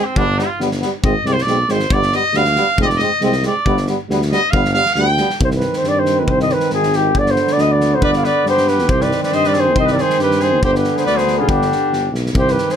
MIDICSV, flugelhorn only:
0, 0, Header, 1, 2, 480
1, 0, Start_track
1, 0, Tempo, 437637
1, 169, Time_signature, 2, 2, 24, 8
1, 6888, Tempo, 432900
1, 14075, End_track
2, 0, Start_track
2, 0, Title_t, "Flugelhorn"
2, 0, Program_c, 0, 56
2, 5967, Note_on_c, 0, 72, 85
2, 6017, Note_off_c, 0, 72, 0
2, 6099, Note_on_c, 0, 71, 72
2, 6332, Note_on_c, 0, 72, 77
2, 6348, Note_off_c, 0, 71, 0
2, 6449, Note_on_c, 0, 74, 98
2, 6466, Note_off_c, 0, 72, 0
2, 6569, Note_on_c, 0, 72, 86
2, 6586, Note_off_c, 0, 74, 0
2, 6784, Note_on_c, 0, 71, 83
2, 6800, Note_off_c, 0, 72, 0
2, 6813, Note_off_c, 0, 71, 0
2, 6850, Note_on_c, 0, 71, 88
2, 6913, Note_on_c, 0, 72, 93
2, 6930, Note_off_c, 0, 71, 0
2, 7030, Note_off_c, 0, 72, 0
2, 7037, Note_on_c, 0, 75, 86
2, 7158, Note_on_c, 0, 71, 87
2, 7174, Note_off_c, 0, 75, 0
2, 7385, Note_off_c, 0, 71, 0
2, 7393, Note_on_c, 0, 68, 87
2, 7639, Note_on_c, 0, 67, 86
2, 7656, Note_off_c, 0, 68, 0
2, 7889, Note_on_c, 0, 74, 100
2, 7906, Note_off_c, 0, 67, 0
2, 8023, Note_on_c, 0, 72, 84
2, 8040, Note_off_c, 0, 74, 0
2, 8265, Note_on_c, 0, 74, 94
2, 8282, Note_off_c, 0, 72, 0
2, 8354, Note_on_c, 0, 75, 97
2, 8370, Note_off_c, 0, 74, 0
2, 8482, Note_on_c, 0, 74, 94
2, 8498, Note_off_c, 0, 75, 0
2, 8734, Note_on_c, 0, 72, 88
2, 8750, Note_off_c, 0, 74, 0
2, 8828, Note_off_c, 0, 72, 0
2, 8835, Note_on_c, 0, 74, 102
2, 8945, Note_off_c, 0, 74, 0
2, 8980, Note_on_c, 0, 77, 72
2, 9074, Note_on_c, 0, 74, 94
2, 9090, Note_off_c, 0, 77, 0
2, 9306, Note_off_c, 0, 74, 0
2, 9337, Note_on_c, 0, 72, 105
2, 9548, Note_on_c, 0, 71, 90
2, 9565, Note_off_c, 0, 72, 0
2, 9781, Note_on_c, 0, 72, 97
2, 9798, Note_off_c, 0, 71, 0
2, 9929, Note_on_c, 0, 74, 79
2, 9946, Note_off_c, 0, 72, 0
2, 10151, Note_off_c, 0, 74, 0
2, 10157, Note_on_c, 0, 74, 82
2, 10287, Note_on_c, 0, 75, 94
2, 10304, Note_off_c, 0, 74, 0
2, 10434, Note_on_c, 0, 74, 90
2, 10451, Note_off_c, 0, 75, 0
2, 10566, Note_on_c, 0, 72, 96
2, 10582, Note_off_c, 0, 74, 0
2, 10771, Note_off_c, 0, 72, 0
2, 10778, Note_on_c, 0, 75, 88
2, 10919, Note_on_c, 0, 74, 78
2, 10935, Note_off_c, 0, 75, 0
2, 11022, Note_on_c, 0, 72, 94
2, 11039, Note_off_c, 0, 74, 0
2, 11239, Note_off_c, 0, 72, 0
2, 11267, Note_on_c, 0, 71, 96
2, 11492, Note_on_c, 0, 72, 96
2, 11509, Note_off_c, 0, 71, 0
2, 11714, Note_off_c, 0, 72, 0
2, 11720, Note_on_c, 0, 72, 96
2, 11828, Note_off_c, 0, 72, 0
2, 11866, Note_on_c, 0, 71, 73
2, 12105, Note_on_c, 0, 72, 70
2, 12122, Note_off_c, 0, 71, 0
2, 12179, Note_off_c, 0, 72, 0
2, 12186, Note_on_c, 0, 74, 97
2, 12310, Note_on_c, 0, 72, 79
2, 12327, Note_off_c, 0, 74, 0
2, 12542, Note_on_c, 0, 68, 74
2, 12559, Note_off_c, 0, 72, 0
2, 12665, Note_on_c, 0, 67, 75
2, 12682, Note_off_c, 0, 68, 0
2, 13377, Note_off_c, 0, 67, 0
2, 13655, Note_on_c, 0, 72, 92
2, 13797, Note_on_c, 0, 71, 79
2, 13813, Note_off_c, 0, 72, 0
2, 14027, Note_on_c, 0, 72, 77
2, 14044, Note_off_c, 0, 71, 0
2, 14075, Note_off_c, 0, 72, 0
2, 14075, End_track
0, 0, End_of_file